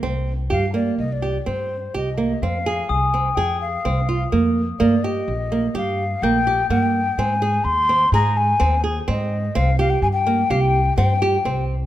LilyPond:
<<
  \new Staff \with { instrumentName = "Glockenspiel" } { \time 5/4 \key c \minor \tempo 4 = 126 r1 r4 | r4 ees'''2 r2 | r2. g'''2 | r1 r4 |
r1 r4 | }
  \new Staff \with { instrumentName = "Flute" } { \time 5/4 \key c \minor r4 f''8 d''8 ees''16 d''8. c''4 ees''4 | f''4 aes''4 g''8 f''4. r4 | d''8 ees''4. f''4 g''4 g''4 | aes''4 c'''4 bes''8 aes''4 r8 ees''4 |
f''8 f''16 g''16 aes''16 g''8. f''16 g''8. g''4. r8 | }
  \new Staff \with { instrumentName = "Nylon-string guitar" } { \time 5/4 \key c \minor c'4 g'8 bes4 g'8 c'4 g'8 bes8 | c'8 aes'4 c'8 aes'4 c'8 f'8 bes4 | bes8 g'4 bes8 g'4 bes8 g'8 bes4 | c'8 aes'4 c'8 aes'4 c'8 aes'8 c'4 |
c'8 g'4 bes8 g'4 c'8 g'8 c'4 | }
  \new Staff \with { instrumentName = "Upright bass" } { \clef bass \time 5/4 \key c \minor c,4 g,4 c,4 g,4 c,4 | f,4 c,4 f,4 c,4 f,4 | g,4 bes,,4 g,4 bes,,4 g,4 | aes,4 ees,4 aes,4 ees,4 aes,4 |
c,4 g,4 c,4 g,4 c,4 | }
>>